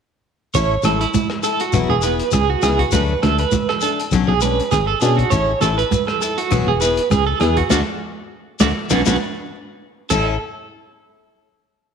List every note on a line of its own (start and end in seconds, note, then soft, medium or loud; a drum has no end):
0.54 0.77 A1 medium
0.54 0.73 C#4 medium
0.54 0.74 E4 medium
0.54 0.74 A4 medium
0.54 0.83 C#5 medium
0.54 kick medium
0.54 closed hi-hat soft
0.54 muted conga soft
0.54 shekere medium
0.83 1.06 A1 medium
0.83 1.03 A4 medium
0.83 1.00 A4 medium
0.83 cross-stick medium
0.83 closed hi-hat soft
0.83 muted conga soft
0.83 high conga medium
0.83 shekere medium
0.87 1.05 E4 soft
1.01 1.29 E4 medium
1.01 closed hi-hat soft
1.14 kick medium
1.14 closed hi-hat soft
1.14 high conga loud
1.14 shekere medium
1.30 muted clean electric guitar stroke medium
1.30 cross-stick medium
1.43 1.64 E4 soft
1.43 1.62 A4 medium
1.43 1.59 A4 medium
1.43 closed hi-hat medium
1.43 shekere medium
1.60 1.89 F#4 medium
1.60 closed hi-hat medium
1.73 1.86 E1 medium
1.73 1.92 F#3 medium
1.73 1.93 B3 medium
1.73 1.93 E4 medium
1.73 1.93 G#4 medium
1.73 kick medium
1.73 cross-stick medium
1.73 closed hi-hat soft
1.73 shekere medium
1.89 2.22 E1 loud
1.89 2.03 G#4 medium
2.02 2.23 B3 soft
2.02 2.22 E4 medium
2.02 2.21 G#4 medium
2.02 2.32 B4 medium
2.02 closed hi-hat soft
2.02 shekere medium
2.19 closed hi-hat soft
2.32 2.56 C#2 medium
2.32 2.49 G#4 medium
2.32 kick medium
2.32 cross-stick medium
2.32 closed hi-hat soft
2.32 high conga medium
2.32 shekere medium
2.50 2.63 F#4 medium
2.62 2.85 C#2 medium
2.62 2.83 B3 medium
2.62 2.83 E4 medium
2.62 2.82 G#4 medium
2.62 2.78 G#4 medium
2.62 cross-stick medium
2.62 closed hi-hat soft
2.62 muted conga soft
2.62 shekere medium
2.79 2.92 F#4 medium
2.79 kick medium
2.79 closed hi-hat soft
2.92 3.16 D2 medium
2.92 3.12 F#3 medium
2.92 3.12 A3 medium
2.92 3.13 D4 medium
2.92 3.21 B4 medium
2.92 kick medium
2.92 closed hi-hat soft
2.92 shekere medium
3.23 3.46 D2 medium
3.23 3.43 A3 soft
3.23 3.42 D4 medium
3.23 3.38 A4 medium
3.23 cross-stick medium
3.23 closed hi-hat soft
3.23 muted conga soft
3.23 high conga medium
3.23 low conga medium
3.38 3.68 B4 medium
3.38 closed hi-hat soft
3.52 kick medium
3.52 closed hi-hat soft
3.52 high conga medium
3.52 low conga medium
3.52 shekere medium
3.69 3.81 A4 medium
3.69 cross-stick medium
3.81 4.01 D4 soft
3.81 3.98 A4 medium
3.81 closed hi-hat soft
3.81 shekere medium
3.85 4.03 A3 soft
4.00 closed hi-hat soft
4.11 4.25 B1 loud
4.11 4.32 F#3 medium
4.11 4.32 C#4 medium
4.11 4.32 D4 medium
4.11 kick medium
4.11 cross-stick medium
4.11 closed hi-hat soft
4.11 shekere medium
4.28 4.61 B1 loud
4.28 4.42 G#4 medium
4.41 4.61 D4 soft
4.41 4.71 B4 medium
4.41 closed hi-hat soft
4.41 high conga medium
4.41 shekere medium
4.45 4.63 C#4 soft
4.60 closed hi-hat soft
4.71 4.95 G#1 medium
4.71 4.87 G#4 medium
4.71 kick medium
4.71 cross-stick medium
4.71 closed hi-hat soft
4.71 high conga medium
4.71 shekere medium
4.87 5.01 A4 medium
5.01 5.25 B2 loud
5.01 5.22 C#4 medium
5.01 5.21 D4 medium
5.01 5.17 G#4 medium
5.01 closed hi-hat soft
5.01 muted conga soft
5.01 shekere medium
5.17 5.31 F#4 medium
5.17 kick medium
5.17 closed hi-hat soft
5.30 5.55 A1 medium
5.30 5.50 C#4 medium
5.30 5.51 E4 medium
5.30 5.52 A4 medium
5.30 5.60 C#5 medium
5.30 kick medium
5.30 closed hi-hat soft
5.30 muted conga soft
5.30 shekere medium
5.61 5.84 A1 loud
5.61 5.82 E4 soft
5.61 5.80 A4 medium
5.61 5.77 A4 medium
5.61 cross-stick medium
5.61 closed hi-hat soft
5.61 muted conga soft
5.61 high conga medium
5.61 shekere medium
5.78 6.06 B4 medium
5.78 closed hi-hat soft
5.91 kick medium
5.91 closed hi-hat soft
5.91 high conga medium
5.91 shekere medium
6.07 6.21 A4 medium
6.07 cross-stick medium
6.21 6.41 E4 soft
6.21 6.40 A4 soft
6.21 6.37 A4 medium
6.21 closed hi-hat soft
6.21 shekere medium
6.38 6.66 F#4 medium
6.38 closed hi-hat medium
6.51 6.64 E1 loud
6.51 6.70 F#3 medium
6.51 6.70 B3 medium
6.51 6.71 G#4 medium
6.51 muted steel-string acoustic guitar stroke medium
6.51 kick medium
6.51 cross-stick medium
6.51 closed hi-hat medium
6.51 muted conga soft
6.51 shekere medium
6.67 7.00 E1 medium
6.67 6.80 G#4 medium
6.80 7.01 B3 soft
6.80 7.00 E4 soft
6.80 7.00 G#4 medium
6.80 7.09 B4 medium
6.80 closed hi-hat soft
6.80 shekere medium
6.97 closed hi-hat soft
7.10 7.34 C#2 medium
7.10 7.26 G#4 medium
7.10 kick medium
7.10 cross-stick medium
7.10 closed hi-hat soft
7.10 high conga medium
7.10 shekere medium
7.27 7.40 A4 medium
7.40 7.63 E2 medium
7.40 7.61 B3 soft
7.40 7.60 E4 medium
7.40 7.59 G#4 medium
7.40 7.56 G#4 medium
7.40 cross-stick medium
7.40 closed hi-hat soft
7.57 7.69 F#4 medium
7.57 kick medium
7.57 closed hi-hat soft
7.69 7.83 D2 medium
7.69 7.82 A3 medium
7.69 7.81 D4 medium
7.69 7.81 F#4 medium
7.69 7.81 A4 medium
7.69 7.81 D5 medium
7.69 kick medium
7.69 snare medium
7.69 high conga medium
7.69 shekere medium
8.60 8.73 D2 medium
8.60 8.71 A3 medium
8.60 8.71 D4 medium
8.60 8.71 F#4 medium
8.60 8.71 A4 medium
8.60 8.71 D5 medium
8.60 kick medium
8.60 snare medium
8.60 high conga medium
8.60 shekere medium
8.90 9.03 B1 medium
8.90 9.01 C#4 medium
8.90 9.01 D4 medium
8.90 9.01 F#4 medium
8.90 9.01 B4 medium
8.90 kick medium
8.90 snare medium
8.90 high conga medium
8.90 shekere medium
9.06 9.17 B1 medium
9.06 9.15 C#4 medium
9.06 9.15 D4 medium
9.06 9.16 D4 medium
9.06 9.15 F#4 medium
9.06 9.16 F#4 medium
9.06 9.16 B4 loud
9.06 kick medium
9.06 snare medium
9.06 high conga medium
9.06 shekere medium
10.10 10.38 A1 medium
10.10 10.34 C#4 medium
10.10 10.35 E4 medium
10.10 10.38 A4 medium
10.10 10.35 A4 medium
10.10 kick medium
10.10 crash medium
10.10 muted conga medium
10.10 shekere medium